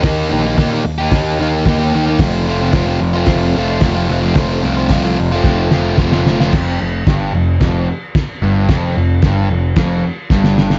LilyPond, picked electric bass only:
\new Staff \with { instrumentName = "Picked electric bass" } { \clef bass \time 4/4 \key f \mixolydian \tempo 4 = 111 ees,8 bes,,8 bes,8 ees,8 ees,8 ees,8 ees,8 ees,8 | f,,4 f,,8 f,,8 f,,8 f,,8 f,,8 f,,8 | f,,8 c,8 c,8 f,,8 f,,8 f,,8 f,,8 f,,8 | f,,8 f,,8 g,,8 f,,8 f,,8 r4 g,,8 |
f,,8 f,,8 g,,8 f,,8 f,,8 r8 g,,4 | }